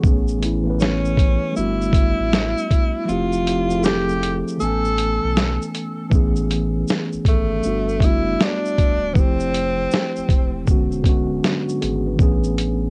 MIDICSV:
0, 0, Header, 1, 5, 480
1, 0, Start_track
1, 0, Key_signature, 3, "major"
1, 0, Tempo, 759494
1, 23, Time_signature, 4, 2, 24, 8
1, 8153, End_track
2, 0, Start_track
2, 0, Title_t, "Tenor saxophone"
2, 0, Program_c, 0, 66
2, 510, Note_on_c, 0, 61, 88
2, 983, Note_off_c, 0, 61, 0
2, 987, Note_on_c, 0, 64, 94
2, 1929, Note_off_c, 0, 64, 0
2, 1929, Note_on_c, 0, 64, 76
2, 1949, Note_on_c, 0, 65, 102
2, 1958, Note_off_c, 0, 64, 0
2, 2427, Note_on_c, 0, 67, 103
2, 2436, Note_off_c, 0, 65, 0
2, 2756, Note_off_c, 0, 67, 0
2, 2910, Note_on_c, 0, 69, 108
2, 3602, Note_off_c, 0, 69, 0
2, 4602, Note_on_c, 0, 57, 93
2, 5086, Note_on_c, 0, 64, 99
2, 5096, Note_off_c, 0, 57, 0
2, 5329, Note_on_c, 0, 62, 98
2, 5338, Note_off_c, 0, 64, 0
2, 5776, Note_on_c, 0, 59, 64
2, 5785, Note_off_c, 0, 62, 0
2, 5811, Note_on_c, 0, 60, 100
2, 5820, Note_off_c, 0, 59, 0
2, 6757, Note_off_c, 0, 60, 0
2, 8153, End_track
3, 0, Start_track
3, 0, Title_t, "Tine electric piano"
3, 0, Program_c, 1, 4
3, 0, Control_c, 1, 64, 127
3, 4, Note_on_c, 1, 52, 78
3, 15, Note_on_c, 1, 57, 75
3, 26, Note_on_c, 1, 59, 73
3, 31, Control_c, 1, 64, 0
3, 36, Note_on_c, 1, 61, 73
3, 46, Note_on_c, 1, 68, 86
3, 133, Control_c, 1, 64, 127
3, 217, Note_off_c, 1, 52, 0
3, 222, Note_off_c, 1, 57, 0
3, 227, Note_off_c, 1, 59, 0
3, 232, Note_off_c, 1, 61, 0
3, 237, Note_off_c, 1, 68, 0
3, 244, Note_on_c, 1, 52, 66
3, 254, Note_on_c, 1, 57, 62
3, 265, Note_on_c, 1, 59, 57
3, 275, Note_on_c, 1, 61, 58
3, 286, Note_on_c, 1, 64, 81
3, 375, Note_off_c, 1, 52, 0
3, 380, Note_off_c, 1, 57, 0
3, 386, Note_off_c, 1, 59, 0
3, 391, Note_off_c, 1, 61, 0
3, 397, Note_off_c, 1, 64, 0
3, 403, Note_on_c, 1, 52, 77
3, 414, Note_on_c, 1, 57, 69
3, 421, Note_on_c, 1, 59, 68
3, 432, Note_on_c, 1, 61, 68
3, 443, Note_on_c, 1, 71, 78
3, 964, Note_off_c, 1, 57, 0
3, 964, Note_on_c, 1, 55, 78
3, 972, Note_on_c, 1, 57, 75
3, 975, Note_off_c, 1, 52, 0
3, 977, Note_off_c, 1, 59, 0
3, 985, Note_on_c, 1, 59, 74
3, 990, Note_off_c, 1, 61, 0
3, 991, Control_c, 1, 64, 0
3, 995, Note_off_c, 1, 71, 0
3, 995, Note_on_c, 1, 62, 71
3, 1006, Note_on_c, 1, 66, 81
3, 1105, Control_c, 1, 64, 127
3, 1756, Note_off_c, 1, 55, 0
3, 1760, Note_off_c, 1, 57, 0
3, 1767, Note_off_c, 1, 59, 0
3, 1772, Note_off_c, 1, 62, 0
3, 1777, Note_off_c, 1, 66, 0
3, 1928, Note_on_c, 1, 53, 79
3, 1939, Note_on_c, 1, 57, 73
3, 1949, Note_on_c, 1, 60, 74
3, 1953, Control_c, 1, 64, 0
3, 1958, Note_on_c, 1, 64, 67
3, 1971, Note_on_c, 1, 67, 80
3, 2053, Control_c, 1, 64, 127
3, 2138, Note_off_c, 1, 53, 0
3, 2144, Note_off_c, 1, 57, 0
3, 2149, Note_off_c, 1, 60, 0
3, 2154, Note_off_c, 1, 64, 0
3, 2160, Note_off_c, 1, 67, 0
3, 2169, Note_on_c, 1, 53, 71
3, 2180, Note_on_c, 1, 57, 64
3, 2189, Note_on_c, 1, 60, 61
3, 2202, Note_on_c, 1, 64, 60
3, 2212, Note_on_c, 1, 67, 77
3, 2298, Note_off_c, 1, 53, 0
3, 2303, Note_off_c, 1, 57, 0
3, 2308, Note_off_c, 1, 60, 0
3, 2314, Note_off_c, 1, 64, 0
3, 2319, Note_off_c, 1, 67, 0
3, 2328, Note_on_c, 1, 53, 75
3, 2339, Note_on_c, 1, 57, 64
3, 2349, Note_on_c, 1, 60, 71
3, 2360, Note_on_c, 1, 64, 64
3, 2370, Note_on_c, 1, 68, 64
3, 2384, Note_off_c, 1, 68, 0
3, 2408, Note_on_c, 1, 69, 84
3, 2895, Note_on_c, 1, 52, 76
3, 2896, Note_off_c, 1, 57, 0
3, 2898, Note_off_c, 1, 53, 0
3, 2904, Note_on_c, 1, 57, 69
3, 2908, Note_off_c, 1, 60, 0
3, 2912, Control_c, 1, 64, 0
3, 2914, Note_off_c, 1, 64, 0
3, 2915, Note_on_c, 1, 59, 74
3, 2924, Note_on_c, 1, 61, 72
3, 2936, Note_on_c, 1, 80, 79
3, 2938, Note_off_c, 1, 69, 0
3, 3017, Control_c, 1, 64, 127
3, 3682, Note_off_c, 1, 52, 0
3, 3686, Note_off_c, 1, 57, 0
3, 3692, Note_off_c, 1, 59, 0
3, 3696, Note_off_c, 1, 61, 0
3, 3702, Note_off_c, 1, 80, 0
3, 3853, Note_on_c, 1, 52, 96
3, 3861, Note_on_c, 1, 57, 77
3, 3871, Control_c, 1, 64, 0
3, 3873, Note_on_c, 1, 59, 82
3, 3881, Note_on_c, 1, 61, 83
3, 3890, Note_on_c, 1, 68, 98
3, 3990, Control_c, 1, 64, 127
3, 4612, Note_off_c, 1, 52, 0
3, 4617, Note_off_c, 1, 57, 0
3, 4622, Note_off_c, 1, 59, 0
3, 4626, Note_off_c, 1, 61, 0
3, 4631, Note_off_c, 1, 68, 0
3, 4808, Note_on_c, 1, 55, 72
3, 4818, Note_on_c, 1, 57, 65
3, 4829, Note_on_c, 1, 59, 73
3, 4831, Control_c, 1, 64, 0
3, 4836, Note_on_c, 1, 62, 75
3, 4847, Note_on_c, 1, 66, 83
3, 4933, Control_c, 1, 64, 127
3, 5022, Note_off_c, 1, 55, 0
3, 5028, Note_off_c, 1, 57, 0
3, 5033, Note_off_c, 1, 59, 0
3, 5036, Note_off_c, 1, 62, 0
3, 5042, Note_off_c, 1, 66, 0
3, 5050, Note_on_c, 1, 55, 68
3, 5061, Note_on_c, 1, 57, 65
3, 5070, Note_on_c, 1, 59, 61
3, 5078, Note_on_c, 1, 62, 66
3, 5089, Note_on_c, 1, 66, 76
3, 5641, Note_off_c, 1, 55, 0
3, 5646, Note_off_c, 1, 57, 0
3, 5651, Note_off_c, 1, 59, 0
3, 5655, Note_off_c, 1, 62, 0
3, 5660, Note_off_c, 1, 66, 0
3, 5770, Note_on_c, 1, 53, 77
3, 5779, Note_on_c, 1, 57, 69
3, 5787, Note_on_c, 1, 60, 67
3, 5792, Control_c, 1, 64, 0
3, 5799, Note_on_c, 1, 64, 70
3, 5809, Note_on_c, 1, 67, 84
3, 5912, Control_c, 1, 64, 127
3, 6531, Note_off_c, 1, 53, 0
3, 6536, Note_off_c, 1, 57, 0
3, 6540, Note_off_c, 1, 60, 0
3, 6546, Note_off_c, 1, 64, 0
3, 6550, Note_off_c, 1, 67, 0
3, 6730, Note_on_c, 1, 50, 85
3, 6741, Note_on_c, 1, 56, 83
3, 6751, Note_on_c, 1, 59, 87
3, 6753, Control_c, 1, 64, 0
3, 6762, Note_on_c, 1, 61, 81
3, 6770, Note_on_c, 1, 66, 97
3, 6882, Control_c, 1, 64, 127
3, 6944, Note_off_c, 1, 50, 0
3, 6949, Note_off_c, 1, 56, 0
3, 6954, Note_off_c, 1, 59, 0
3, 6959, Note_off_c, 1, 61, 0
3, 6964, Note_off_c, 1, 66, 0
3, 6967, Note_on_c, 1, 50, 88
3, 6980, Note_on_c, 1, 56, 80
3, 6989, Note_on_c, 1, 59, 74
3, 6997, Note_on_c, 1, 61, 80
3, 7009, Note_on_c, 1, 66, 97
3, 7222, Note_off_c, 1, 56, 0
3, 7225, Note_on_c, 1, 62, 61
3, 7226, Note_off_c, 1, 59, 0
3, 7229, Note_on_c, 1, 54, 50
3, 7231, Note_off_c, 1, 61, 0
3, 7236, Note_off_c, 1, 66, 0
3, 7373, Note_off_c, 1, 62, 0
3, 7375, Note_off_c, 1, 54, 0
3, 7381, Note_on_c, 1, 66, 72
3, 7460, Note_off_c, 1, 66, 0
3, 7466, Note_on_c, 1, 68, 69
3, 7469, Note_on_c, 1, 59, 61
3, 7559, Note_off_c, 1, 50, 0
3, 7613, Note_off_c, 1, 68, 0
3, 7615, Note_off_c, 1, 59, 0
3, 7626, Note_on_c, 1, 71, 53
3, 7630, Note_on_c, 1, 62, 46
3, 7687, Note_on_c, 1, 52, 91
3, 7695, Note_on_c, 1, 57, 77
3, 7706, Note_on_c, 1, 59, 87
3, 7710, Control_c, 1, 64, 0
3, 7718, Note_on_c, 1, 61, 84
3, 7727, Note_on_c, 1, 68, 101
3, 7813, Control_c, 1, 64, 127
3, 7851, Note_off_c, 1, 71, 0
3, 7853, Note_off_c, 1, 62, 0
3, 8153, Note_off_c, 1, 52, 0
3, 8153, Note_off_c, 1, 57, 0
3, 8153, Note_off_c, 1, 59, 0
3, 8153, Note_off_c, 1, 61, 0
3, 8153, Note_off_c, 1, 68, 0
3, 8153, End_track
4, 0, Start_track
4, 0, Title_t, "Sub bass"
4, 0, Program_c, 2, 38
4, 28, Note_on_c, 2, 33, 101
4, 877, Note_off_c, 2, 33, 0
4, 994, Note_on_c, 2, 31, 102
4, 1360, Note_off_c, 2, 31, 0
4, 1386, Note_on_c, 2, 33, 102
4, 1607, Note_off_c, 2, 33, 0
4, 1951, Note_on_c, 2, 29, 92
4, 2798, Note_off_c, 2, 29, 0
4, 2916, Note_on_c, 2, 33, 104
4, 3281, Note_off_c, 2, 33, 0
4, 3310, Note_on_c, 2, 35, 93
4, 3529, Note_off_c, 2, 35, 0
4, 3871, Note_on_c, 2, 33, 105
4, 4322, Note_off_c, 2, 33, 0
4, 4509, Note_on_c, 2, 32, 44
4, 4540, Note_off_c, 2, 32, 0
4, 4585, Note_on_c, 2, 32, 90
4, 4808, Note_off_c, 2, 32, 0
4, 4836, Note_on_c, 2, 31, 106
4, 5054, Note_off_c, 2, 31, 0
4, 5062, Note_on_c, 2, 30, 104
4, 5287, Note_off_c, 2, 30, 0
4, 5555, Note_on_c, 2, 26, 91
4, 5774, Note_off_c, 2, 26, 0
4, 5788, Note_on_c, 2, 29, 113
4, 6241, Note_off_c, 2, 29, 0
4, 6429, Note_on_c, 2, 28, 42
4, 6460, Note_off_c, 2, 28, 0
4, 6504, Note_on_c, 2, 28, 91
4, 6728, Note_off_c, 2, 28, 0
4, 6751, Note_on_c, 2, 28, 92
4, 6982, Note_on_c, 2, 26, 86
4, 6991, Note_off_c, 2, 28, 0
4, 7207, Note_off_c, 2, 26, 0
4, 7475, Note_on_c, 2, 32, 92
4, 7694, Note_off_c, 2, 32, 0
4, 7710, Note_on_c, 2, 33, 97
4, 8153, Note_off_c, 2, 33, 0
4, 8153, End_track
5, 0, Start_track
5, 0, Title_t, "Drums"
5, 24, Note_on_c, 9, 36, 104
5, 28, Note_on_c, 9, 82, 52
5, 87, Note_off_c, 9, 36, 0
5, 91, Note_off_c, 9, 82, 0
5, 177, Note_on_c, 9, 82, 55
5, 240, Note_off_c, 9, 82, 0
5, 270, Note_on_c, 9, 42, 63
5, 270, Note_on_c, 9, 82, 49
5, 333, Note_off_c, 9, 42, 0
5, 333, Note_off_c, 9, 82, 0
5, 504, Note_on_c, 9, 82, 64
5, 520, Note_on_c, 9, 38, 101
5, 567, Note_off_c, 9, 82, 0
5, 583, Note_off_c, 9, 38, 0
5, 663, Note_on_c, 9, 82, 42
5, 726, Note_off_c, 9, 82, 0
5, 742, Note_on_c, 9, 36, 94
5, 752, Note_on_c, 9, 42, 67
5, 752, Note_on_c, 9, 82, 45
5, 805, Note_off_c, 9, 36, 0
5, 815, Note_off_c, 9, 42, 0
5, 815, Note_off_c, 9, 82, 0
5, 986, Note_on_c, 9, 82, 68
5, 1050, Note_off_c, 9, 82, 0
5, 1146, Note_on_c, 9, 82, 35
5, 1209, Note_off_c, 9, 82, 0
5, 1218, Note_on_c, 9, 36, 91
5, 1228, Note_on_c, 9, 42, 69
5, 1228, Note_on_c, 9, 82, 53
5, 1282, Note_off_c, 9, 36, 0
5, 1291, Note_off_c, 9, 42, 0
5, 1291, Note_off_c, 9, 82, 0
5, 1473, Note_on_c, 9, 82, 56
5, 1474, Note_on_c, 9, 38, 110
5, 1536, Note_off_c, 9, 82, 0
5, 1537, Note_off_c, 9, 38, 0
5, 1628, Note_on_c, 9, 82, 49
5, 1691, Note_off_c, 9, 82, 0
5, 1710, Note_on_c, 9, 36, 86
5, 1713, Note_on_c, 9, 42, 63
5, 1713, Note_on_c, 9, 82, 49
5, 1774, Note_off_c, 9, 36, 0
5, 1776, Note_off_c, 9, 42, 0
5, 1776, Note_off_c, 9, 82, 0
5, 1950, Note_on_c, 9, 82, 52
5, 2013, Note_off_c, 9, 82, 0
5, 2101, Note_on_c, 9, 82, 55
5, 2164, Note_off_c, 9, 82, 0
5, 2194, Note_on_c, 9, 42, 73
5, 2194, Note_on_c, 9, 82, 51
5, 2257, Note_off_c, 9, 42, 0
5, 2257, Note_off_c, 9, 82, 0
5, 2340, Note_on_c, 9, 82, 52
5, 2403, Note_off_c, 9, 82, 0
5, 2423, Note_on_c, 9, 82, 66
5, 2439, Note_on_c, 9, 38, 113
5, 2486, Note_off_c, 9, 82, 0
5, 2502, Note_off_c, 9, 38, 0
5, 2583, Note_on_c, 9, 82, 36
5, 2646, Note_off_c, 9, 82, 0
5, 2674, Note_on_c, 9, 42, 67
5, 2674, Note_on_c, 9, 82, 44
5, 2737, Note_off_c, 9, 42, 0
5, 2737, Note_off_c, 9, 82, 0
5, 2831, Note_on_c, 9, 82, 49
5, 2894, Note_off_c, 9, 82, 0
5, 2908, Note_on_c, 9, 82, 72
5, 2971, Note_off_c, 9, 82, 0
5, 3065, Note_on_c, 9, 82, 34
5, 3128, Note_off_c, 9, 82, 0
5, 3149, Note_on_c, 9, 42, 74
5, 3149, Note_on_c, 9, 82, 51
5, 3212, Note_off_c, 9, 42, 0
5, 3212, Note_off_c, 9, 82, 0
5, 3393, Note_on_c, 9, 82, 59
5, 3394, Note_on_c, 9, 38, 103
5, 3456, Note_off_c, 9, 82, 0
5, 3457, Note_off_c, 9, 38, 0
5, 3552, Note_on_c, 9, 82, 50
5, 3615, Note_off_c, 9, 82, 0
5, 3632, Note_on_c, 9, 42, 59
5, 3632, Note_on_c, 9, 82, 43
5, 3696, Note_off_c, 9, 42, 0
5, 3696, Note_off_c, 9, 82, 0
5, 3865, Note_on_c, 9, 36, 101
5, 3870, Note_on_c, 9, 82, 53
5, 3928, Note_off_c, 9, 36, 0
5, 3933, Note_off_c, 9, 82, 0
5, 4019, Note_on_c, 9, 82, 48
5, 4082, Note_off_c, 9, 82, 0
5, 4113, Note_on_c, 9, 42, 68
5, 4113, Note_on_c, 9, 82, 49
5, 4176, Note_off_c, 9, 42, 0
5, 4176, Note_off_c, 9, 82, 0
5, 4346, Note_on_c, 9, 82, 62
5, 4362, Note_on_c, 9, 38, 104
5, 4410, Note_off_c, 9, 82, 0
5, 4426, Note_off_c, 9, 38, 0
5, 4501, Note_on_c, 9, 82, 41
5, 4565, Note_off_c, 9, 82, 0
5, 4582, Note_on_c, 9, 36, 85
5, 4589, Note_on_c, 9, 42, 62
5, 4589, Note_on_c, 9, 82, 49
5, 4645, Note_off_c, 9, 36, 0
5, 4652, Note_off_c, 9, 42, 0
5, 4652, Note_off_c, 9, 82, 0
5, 4823, Note_on_c, 9, 82, 73
5, 4886, Note_off_c, 9, 82, 0
5, 4983, Note_on_c, 9, 82, 31
5, 5046, Note_off_c, 9, 82, 0
5, 5058, Note_on_c, 9, 36, 81
5, 5068, Note_on_c, 9, 42, 70
5, 5068, Note_on_c, 9, 82, 45
5, 5121, Note_off_c, 9, 36, 0
5, 5132, Note_off_c, 9, 42, 0
5, 5132, Note_off_c, 9, 82, 0
5, 5312, Note_on_c, 9, 82, 58
5, 5313, Note_on_c, 9, 38, 94
5, 5375, Note_off_c, 9, 82, 0
5, 5376, Note_off_c, 9, 38, 0
5, 5470, Note_on_c, 9, 82, 45
5, 5533, Note_off_c, 9, 82, 0
5, 5551, Note_on_c, 9, 36, 80
5, 5551, Note_on_c, 9, 42, 58
5, 5551, Note_on_c, 9, 82, 42
5, 5614, Note_off_c, 9, 36, 0
5, 5615, Note_off_c, 9, 42, 0
5, 5615, Note_off_c, 9, 82, 0
5, 5785, Note_on_c, 9, 36, 106
5, 5789, Note_on_c, 9, 82, 50
5, 5848, Note_off_c, 9, 36, 0
5, 5853, Note_off_c, 9, 82, 0
5, 5940, Note_on_c, 9, 82, 51
5, 6003, Note_off_c, 9, 82, 0
5, 6032, Note_on_c, 9, 42, 60
5, 6032, Note_on_c, 9, 82, 49
5, 6095, Note_off_c, 9, 42, 0
5, 6095, Note_off_c, 9, 82, 0
5, 6264, Note_on_c, 9, 82, 61
5, 6280, Note_on_c, 9, 38, 102
5, 6328, Note_off_c, 9, 82, 0
5, 6344, Note_off_c, 9, 38, 0
5, 6421, Note_on_c, 9, 82, 42
5, 6485, Note_off_c, 9, 82, 0
5, 6502, Note_on_c, 9, 36, 86
5, 6510, Note_on_c, 9, 42, 59
5, 6510, Note_on_c, 9, 82, 45
5, 6565, Note_off_c, 9, 36, 0
5, 6573, Note_off_c, 9, 42, 0
5, 6573, Note_off_c, 9, 82, 0
5, 6745, Note_on_c, 9, 82, 72
5, 6746, Note_on_c, 9, 36, 80
5, 6808, Note_off_c, 9, 82, 0
5, 6809, Note_off_c, 9, 36, 0
5, 6899, Note_on_c, 9, 82, 34
5, 6962, Note_off_c, 9, 82, 0
5, 6978, Note_on_c, 9, 36, 81
5, 6987, Note_on_c, 9, 42, 61
5, 6987, Note_on_c, 9, 82, 50
5, 7041, Note_off_c, 9, 36, 0
5, 7050, Note_off_c, 9, 42, 0
5, 7050, Note_off_c, 9, 82, 0
5, 7230, Note_on_c, 9, 82, 54
5, 7231, Note_on_c, 9, 38, 95
5, 7294, Note_off_c, 9, 82, 0
5, 7295, Note_off_c, 9, 38, 0
5, 7386, Note_on_c, 9, 82, 53
5, 7449, Note_off_c, 9, 82, 0
5, 7471, Note_on_c, 9, 42, 62
5, 7471, Note_on_c, 9, 82, 41
5, 7534, Note_off_c, 9, 42, 0
5, 7534, Note_off_c, 9, 82, 0
5, 7704, Note_on_c, 9, 36, 107
5, 7708, Note_on_c, 9, 82, 51
5, 7767, Note_off_c, 9, 36, 0
5, 7771, Note_off_c, 9, 82, 0
5, 7860, Note_on_c, 9, 82, 52
5, 7923, Note_off_c, 9, 82, 0
5, 7951, Note_on_c, 9, 42, 63
5, 7951, Note_on_c, 9, 82, 45
5, 8014, Note_off_c, 9, 42, 0
5, 8014, Note_off_c, 9, 82, 0
5, 8153, End_track
0, 0, End_of_file